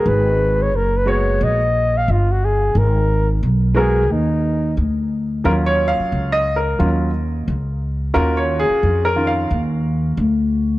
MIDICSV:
0, 0, Header, 1, 5, 480
1, 0, Start_track
1, 0, Key_signature, -6, "minor"
1, 0, Tempo, 674157
1, 39, Time_signature, 4, 2, 24, 8
1, 7681, End_track
2, 0, Start_track
2, 0, Title_t, "Flugelhorn"
2, 0, Program_c, 0, 56
2, 56, Note_on_c, 0, 71, 96
2, 442, Note_on_c, 0, 73, 89
2, 452, Note_off_c, 0, 71, 0
2, 539, Note_on_c, 0, 70, 88
2, 550, Note_off_c, 0, 73, 0
2, 691, Note_on_c, 0, 71, 89
2, 702, Note_off_c, 0, 70, 0
2, 779, Note_on_c, 0, 73, 98
2, 790, Note_off_c, 0, 71, 0
2, 1022, Note_on_c, 0, 75, 97
2, 1033, Note_off_c, 0, 73, 0
2, 1404, Note_on_c, 0, 77, 93
2, 1414, Note_off_c, 0, 75, 0
2, 1503, Note_on_c, 0, 65, 88
2, 1514, Note_off_c, 0, 77, 0
2, 1648, Note_on_c, 0, 66, 84
2, 1658, Note_off_c, 0, 65, 0
2, 1743, Note_on_c, 0, 68, 87
2, 1754, Note_off_c, 0, 66, 0
2, 1979, Note_on_c, 0, 70, 85
2, 1989, Note_off_c, 0, 68, 0
2, 2355, Note_off_c, 0, 70, 0
2, 2695, Note_on_c, 0, 68, 93
2, 2934, Note_on_c, 0, 63, 80
2, 2944, Note_off_c, 0, 68, 0
2, 3406, Note_off_c, 0, 63, 0
2, 7681, End_track
3, 0, Start_track
3, 0, Title_t, "Upright piano"
3, 0, Program_c, 1, 0
3, 0, Note_on_c, 1, 56, 60
3, 0, Note_on_c, 1, 59, 53
3, 0, Note_on_c, 1, 66, 56
3, 0, Note_on_c, 1, 68, 71
3, 476, Note_off_c, 1, 56, 0
3, 479, Note_off_c, 1, 59, 0
3, 483, Note_off_c, 1, 66, 0
3, 484, Note_off_c, 1, 68, 0
3, 751, Note_on_c, 1, 56, 59
3, 756, Note_on_c, 1, 59, 52
3, 761, Note_on_c, 1, 66, 52
3, 767, Note_on_c, 1, 73, 66
3, 1112, Note_off_c, 1, 56, 0
3, 1115, Note_off_c, 1, 59, 0
3, 1117, Note_off_c, 1, 66, 0
3, 1120, Note_off_c, 1, 73, 0
3, 2666, Note_on_c, 1, 56, 73
3, 2673, Note_on_c, 1, 59, 62
3, 2678, Note_on_c, 1, 66, 62
3, 2684, Note_on_c, 1, 70, 75
3, 2856, Note_off_c, 1, 56, 0
3, 2860, Note_off_c, 1, 59, 0
3, 2862, Note_off_c, 1, 66, 0
3, 2865, Note_off_c, 1, 70, 0
3, 3875, Note_on_c, 1, 54, 54
3, 3882, Note_on_c, 1, 61, 52
3, 3883, Note_on_c, 1, 70, 88
3, 3887, Note_on_c, 1, 65, 57
3, 3918, Note_off_c, 1, 70, 0
3, 4033, Note_on_c, 1, 73, 89
3, 4185, Note_on_c, 1, 77, 94
3, 4201, Note_off_c, 1, 73, 0
3, 4503, Note_on_c, 1, 75, 89
3, 4522, Note_off_c, 1, 77, 0
3, 4568, Note_off_c, 1, 54, 0
3, 4572, Note_off_c, 1, 61, 0
3, 4574, Note_off_c, 1, 65, 0
3, 4673, Note_on_c, 1, 70, 67
3, 4676, Note_off_c, 1, 75, 0
3, 4833, Note_on_c, 1, 54, 46
3, 4835, Note_on_c, 1, 61, 41
3, 4838, Note_on_c, 1, 65, 51
3, 4899, Note_off_c, 1, 70, 0
3, 5052, Note_off_c, 1, 54, 0
3, 5053, Note_off_c, 1, 61, 0
3, 5055, Note_off_c, 1, 65, 0
3, 5794, Note_on_c, 1, 66, 55
3, 5796, Note_on_c, 1, 70, 88
3, 5798, Note_on_c, 1, 61, 54
3, 5800, Note_on_c, 1, 65, 66
3, 5960, Note_on_c, 1, 73, 83
3, 5962, Note_off_c, 1, 70, 0
3, 6119, Note_on_c, 1, 68, 85
3, 6124, Note_off_c, 1, 73, 0
3, 6443, Note_on_c, 1, 70, 87
3, 6449, Note_off_c, 1, 68, 0
3, 6511, Note_off_c, 1, 61, 0
3, 6514, Note_off_c, 1, 65, 0
3, 6520, Note_on_c, 1, 51, 46
3, 6522, Note_on_c, 1, 61, 44
3, 6524, Note_on_c, 1, 65, 51
3, 6601, Note_on_c, 1, 77, 85
3, 6606, Note_off_c, 1, 70, 0
3, 6736, Note_off_c, 1, 51, 0
3, 6737, Note_off_c, 1, 61, 0
3, 6738, Note_off_c, 1, 65, 0
3, 6823, Note_off_c, 1, 77, 0
3, 7681, Note_off_c, 1, 66, 0
3, 7681, End_track
4, 0, Start_track
4, 0, Title_t, "Upright bass"
4, 0, Program_c, 2, 32
4, 40, Note_on_c, 2, 32, 99
4, 523, Note_off_c, 2, 32, 0
4, 523, Note_on_c, 2, 30, 87
4, 977, Note_off_c, 2, 30, 0
4, 1002, Note_on_c, 2, 34, 88
4, 1457, Note_off_c, 2, 34, 0
4, 1481, Note_on_c, 2, 31, 87
4, 1936, Note_off_c, 2, 31, 0
4, 1959, Note_on_c, 2, 32, 97
4, 2415, Note_off_c, 2, 32, 0
4, 2441, Note_on_c, 2, 35, 88
4, 2919, Note_off_c, 2, 35, 0
4, 2919, Note_on_c, 2, 39, 88
4, 3375, Note_off_c, 2, 39, 0
4, 3397, Note_on_c, 2, 38, 81
4, 3854, Note_off_c, 2, 38, 0
4, 3879, Note_on_c, 2, 39, 93
4, 4246, Note_off_c, 2, 39, 0
4, 4358, Note_on_c, 2, 37, 85
4, 4815, Note_off_c, 2, 37, 0
4, 4840, Note_on_c, 2, 39, 90
4, 5296, Note_off_c, 2, 39, 0
4, 5323, Note_on_c, 2, 37, 83
4, 5777, Note_off_c, 2, 37, 0
4, 5805, Note_on_c, 2, 39, 97
4, 6169, Note_off_c, 2, 39, 0
4, 6287, Note_on_c, 2, 41, 88
4, 6739, Note_off_c, 2, 41, 0
4, 6768, Note_on_c, 2, 39, 88
4, 7220, Note_off_c, 2, 39, 0
4, 7243, Note_on_c, 2, 38, 89
4, 7681, Note_off_c, 2, 38, 0
4, 7681, End_track
5, 0, Start_track
5, 0, Title_t, "Muted upright bass strokes"
5, 4269, Note_on_c, 9, 29, 47
5, 4341, Note_off_c, 9, 29, 0
5, 6191, Note_on_c, 9, 29, 43
5, 6262, Note_off_c, 9, 29, 0
5, 7681, End_track
0, 0, End_of_file